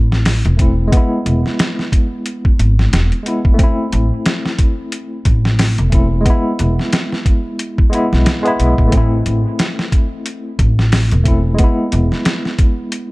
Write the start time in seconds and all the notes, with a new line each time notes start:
Already playing: A1 A3 C4 E4
0.12 snare
0.25 snare, open hi-hat
0.45 E1, closed hi-hat
0.57 A3 C4, kick, closed hi-hat
0.61 E4
0.88 G#3
0.92 B3, kick, closed hi-hat
0.97 E4
1.26 E1, closed hi-hat
1.46 snare
1.59 snare, closed hi-hat
1.79 snare
1.92 kick, closed hi-hat
2.26 closed hi-hat
2.45 kick
2.59 G#1, closed hi-hat
2.79 snare
2.93 E1, snare, closed hi-hat
3.12 closed hi-hat
3.23 G#3 B3, closed hi-hat
3.28 E4
3.45 kick
3.54 A3
3.59 C4, kick, closed hi-hat
3.63 E4
3.92 A1, closed hi-hat
4.26 snare, closed hi-hat
4.46 snare
4.58 kick, closed hi-hat
4.92 closed hi-hat
5.25 A1, kick, closed hi-hat
5.45 snare
5.59 snare, open hi-hat
5.78 E1, closed hi-hat
5.90 A3 C4, kick, closed hi-hat
5.95 E4
6.21 G#3
6.25 B3, kick, closed hi-hat
6.30 E4
6.59 E1, closed hi-hat
6.79 snare
6.92 snare, closed hi-hat
7.12 snare
7.26 kick, closed hi-hat
7.59 closed hi-hat
7.78 kick
7.90 G#3 B3, closed hi-hat
7.95 E4
8.13 B1, snare
8.26 snare, closed hi-hat
8.43 G#3 B3, closed hi-hat
8.47 E4
8.59 B1, closed hi-hat
8.78 A1, kick
8.88 A3
8.92 C4, kick, closed hi-hat
8.97 E4
9.26 A1, closed hi-hat
9.59 snare, closed hi-hat
9.79 snare
9.92 kick, closed hi-hat
10.26 closed hi-hat
10.59 A1, kick, closed hi-hat
10.79 snare
10.92 snare, open hi-hat
11.11 E1, closed hi-hat
11.24 A3 C4, kick, closed hi-hat
11.28 E4
11.54 G#3
11.59 B3, kick, closed hi-hat
11.64 E4
11.92 E1, closed hi-hat
12.12 snare
12.25 snare, closed hi-hat
12.45 snare
12.59 kick, closed hi-hat
12.92 closed hi-hat